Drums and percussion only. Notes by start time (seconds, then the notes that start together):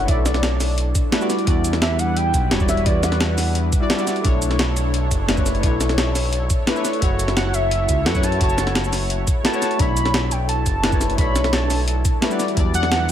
0.08 kick, closed hi-hat
0.26 snare, closed hi-hat, shaker
0.34 snare, closed hi-hat
0.43 snare, closed hi-hat
0.60 snare, open hi-hat, shaker
0.78 closed hi-hat
0.95 kick, closed hi-hat, shaker
1.12 snare, closed hi-hat
1.21 shaker
1.30 snare, closed hi-hat, shaker
1.39 closed hi-hat
1.47 kick, closed hi-hat
1.64 closed hi-hat, shaker
1.73 snare, closed hi-hat
1.82 snare, closed hi-hat
1.99 closed hi-hat, shaker
2.17 closed hi-hat
2.34 kick, closed hi-hat, shaker
2.51 snare, closed hi-hat
2.60 kick, shaker
2.69 snare, closed hi-hat, shaker
2.77 closed hi-hat
2.86 kick, closed hi-hat
3.03 snare, closed hi-hat, shaker
3.12 snare, closed hi-hat
3.21 snare, closed hi-hat
3.38 snare, open hi-hat, shaker
3.55 closed hi-hat
3.72 kick, closed hi-hat, shaker
3.90 snare, closed hi-hat
3.99 closed hi-hat, shaker
4.07 snare, closed hi-hat, shaker
4.16 closed hi-hat
4.25 kick, closed hi-hat
4.42 closed hi-hat, shaker
4.51 snare, closed hi-hat
4.59 snare, closed hi-hat
4.77 closed hi-hat, shaker
4.94 closed hi-hat
5.11 kick, closed hi-hat, shaker
5.29 snare, closed hi-hat
5.37 kick, shaker
5.46 snare, closed hi-hat, shaker
5.55 closed hi-hat
5.63 kick, closed hi-hat
5.81 snare, closed hi-hat, shaker
5.89 snare, closed hi-hat
5.98 snare, closed hi-hat
6.15 snare, open hi-hat, shaker
6.33 closed hi-hat
6.50 kick, closed hi-hat, shaker
6.67 snare, closed hi-hat
6.76 shaker
6.85 snare, closed hi-hat, shaker
6.93 closed hi-hat
7.02 kick, closed hi-hat
7.19 closed hi-hat, shaker
7.28 snare, closed hi-hat
7.37 snare, closed hi-hat
7.54 closed hi-hat, shaker
7.71 closed hi-hat
7.89 kick, closed hi-hat, shaker
8.06 snare, closed hi-hat
8.15 kick, shaker
8.23 snare, closed hi-hat, shaker
8.32 closed hi-hat
8.41 kick, closed hi-hat
8.49 shaker
8.58 snare, closed hi-hat, shaker
8.67 snare, closed hi-hat
8.75 snare, closed hi-hat
8.84 shaker
8.93 snare, open hi-hat, shaker
9.10 closed hi-hat
9.27 kick, closed hi-hat, shaker
9.45 snare, closed hi-hat
9.53 shaker
9.62 snare, closed hi-hat, shaker
9.71 closed hi-hat
9.79 kick, closed hi-hat
9.97 closed hi-hat, shaker
10.05 snare, closed hi-hat
10.14 snare, closed hi-hat
10.31 closed hi-hat, shaker
10.49 closed hi-hat
10.66 kick, closed hi-hat, shaker
10.84 snare, closed hi-hat
10.92 kick, shaker
11.01 snare, closed hi-hat, shaker
11.10 closed hi-hat
11.18 kick, closed hi-hat
11.36 snare, closed hi-hat, shaker
11.44 snare, closed hi-hat
11.53 snare, closed hi-hat
11.70 snare, open hi-hat, shaker
11.88 closed hi-hat
12.05 kick, closed hi-hat, shaker
12.22 snare, closed hi-hat
12.31 shaker
12.40 snare, closed hi-hat, shaker
12.48 closed hi-hat
12.57 kick, closed hi-hat
12.74 closed hi-hat, shaker
12.83 snare, closed hi-hat
12.92 snare, closed hi-hat